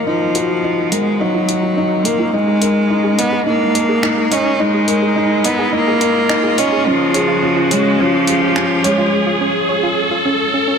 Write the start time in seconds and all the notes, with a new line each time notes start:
Already playing: D#3 D#4 F#4 A#4 F5 F#5, riser
0.06 F3 D#4
0.35 F#4 A#4, closed hi-hat
0.50 F4
0.64 D#4
0.78 F4
0.91 G#3 D#4 A#4, closed hi-hat
1.20 F#3 D#4 A#4
1.34 F4
1.49 F#4, closed hi-hat
1.63 F4
1.77 D#4
2.05 A#3 A#4, closed hi-hat
2.19 F4
2.33 G#3 D#4
2.48 G#4
2.62 D#4 A#4, closed hi-hat
2.71 G#4
2.78 A#4
2.90 D#4 D#5
3.04 G#4
3.18 B3 D#5, closed hi-hat
3.32 G#4
3.46 A#3 D#4
3.75 A#4 D#5, closed hi-hat
3.89 G#4
4.03 D#4, finger snap
4.18 G#4
4.32 C#4 D#4 D#5, closed hi-hat
4.36 D#5
4.59 G#3 D#4 D#5
4.74 G#4
4.88 A#4, closed hi-hat
5.02 G#4
5.16 D#4
5.44 B3 D#5, closed hi-hat
5.59 G#4
5.73 A#3 D#4
5.87 G#4
6.01 D#4 A#4, closed hi-hat
6.29 D#4 D#5, finger snap
6.43 G#4
6.58 C#4 D#5, closed hi-hat
6.72 G#4
6.85 C#3 F3 C#4
7.09 C#4
7.14 G#4 C#5, closed hi-hat
7.28 F4
7.43 C#4
7.56 F4
7.71 G#3 C#4 C#5, closed hi-hat
7.75 F5
7.99 F3 C#4 C#5
8.13 F4
8.27 G#4, closed hi-hat
8.42 F4
8.56 C#4, finger snap
8.84 G#3 C#5, closed hi-hat
8.98 F4
9.27 F4
9.41 C#4
9.69 C#5
9.83 F4
10.11 F4
10.25 C#4
10.54 C#4
10.68 C#4